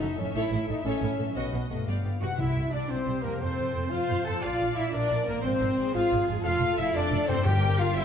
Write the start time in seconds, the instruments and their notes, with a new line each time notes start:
Already playing: harp F#2 A3 E4 C#5 E5, french horn section D#4, violin section E5
0.00 double bass section F#1, cello section F#2, violin section F#4, viola section A4
0.16 double bass section F#1, cello section F#2, harp A2, french horn section C#4, violin section A4, viola section A4
0.21 harp A3
0.26 harp E4
0.30 double bass section A1, harp C#5
0.35 cello section A2, french horn section E4, viola section A4, violin section C#5
0.51 double bass section A1, cello section A2, violin section E4, viola section A4
0.68 double bass section A1, cello section A2, french horn section D#4, violin section A4, viola section A4
0.84 double bass section A1, cello section A2, french horn section C#4, viola section A4, violin section C#5
1.02 double bass section A1, cello section A2, violin section E4, viola section A4
1.19 double bass section A1, cello section A2, harp B2, viola section A4, violin section A4
1.24 harp F#3
1.28 harp D#4
1.33 double bass section B1, cello section B2, viola section F#4, harp D#5, violin section D#5
1.37 french horn section B3, violin section D#5
1.53 double bass section B1, cello section B2, viola section F#4, violin section F#4
1.70 double bass section B1, harp G2, cello section B2, french horn section A3, viola section F#4, violin section B4
1.75 harp G3
1.79 harp F4
1.84 double bass section G1, cello section G2, french horn section B3, viola section G4, harp D5
1.88 violin section D5 F5
2.05 double bass section G1, cello section G2, violin section G4, viola section G4
2.20 double bass section G1, cello section G2 F#4, harp C3, french horn section F#4, viola section G4, violin section B4 F#5, trumpet section F#5, flute F#5
2.26 harp G3
2.31 harp E4
2.35 timpani C3, french horn section E4, cello section E4, harp C5, violin section E5
2.40 double bass section C2, trumpet section E5, flute E5
2.57 double bass section C2
2.71 double bass section C2, french horn section D4, cello section D4, violin section D5, flute D5, trumpet section D5
2.89 double bass section C2, french horn section C4, cello section C4, viola section G4, violin section C5, trumpet section C5, flute C5
3.06 double bass section C2
3.23 double bass section C2, harp F2, french horn section A#3, cello section A#3, violin section A#4, trumpet section A#4, flute A#4
3.28 harp A3
3.32 harp F4
3.37 french horn section C4, viola section A4, harp C5, violin section C5, trumpet section C5
3.41 double bass section F2, cello section C4, violin section C5, flute C5
3.58 double bass section F2
3.75 double bass section F2
3.90 double bass section F2, french horn section F4, cello section F4, viola section C5, violin section F5, trumpet section F5, flute F5
4.09 double bass section F2
4.25 double bass section F2, harp A#2, french horn section A4, cello section A4, violin section A5, trumpet section A5, flute A5
4.30 harp A#3
4.35 harp F4
4.39 french horn section F4, cello section F4, harp D5, viola section D5, violin section F5, trumpet section F5, flute F5
4.44 double bass section A#1
4.61 double bass section A#1
4.75 double bass section A#1, french horn section E4, cello section E4, violin section E5, trumpet section E5, flute E5
4.93 double bass section A#1, french horn section D4, cello section D4, viola section A#4, trumpet section D5, violin section D5, flute D5
5.12 double bass section A#1
5.25 double bass section A#1, harp G#2, french horn section A#3, cello section A#3, violin section A#4, flute A#4, trumpet section A#4
5.31 harp C4
5.35 harp F3
5.40 french horn section C4, cello section C4, viola section C5, violin section C5, harp D#5
5.44 double bass section G#1, trumpet section C5, violin section C5, flute C5
5.61 double bass section G#1, viola section A#4
5.77 double bass section G#1, viola section G#4
5.94 double bass section G#1, french horn section F4, cello section F4, trumpet section F5, violin section F5, flute F5
6.12 double bass section G#1
6.27 double bass section G#1, harp F2
6.31 harp A3
6.41 trumpet section F5, violin section F5, harp A5
6.45 double bass section F1, cello section F4, french horn section F4, viola section A4, flute F5, violin section F5
6.61 double bass section F1
6.77 double bass section F1, cello section E4, french horn section E4, violin section E5, flute E5, trumpet section E5
6.94 double bass section F1, french horn section D4, cello section D4, viola section A4, flute D5, violin section D5, trumpet section D5
7.12 double bass section F1
7.28 double bass section F1, harp G2, french horn section C4, cello section C4, flute C5, violin section C5, trumpet section C5
7.33 harp A#3
7.37 harp G4
7.42 double bass section G1, french horn section G4, harp D5, flute G5, violin section G5
7.46 timpani G2, cello section G4, viola section A#4, trumpet section G5, violin section G5
7.63 double bass section G1
7.78 double bass section G1, french horn section F4, cello section F4, violin section F5, flute F5, trumpet section F5
7.95 double bass section G1, cello section E4, french horn section E4, viola section C5, flute E5, violin section E5, trumpet section E5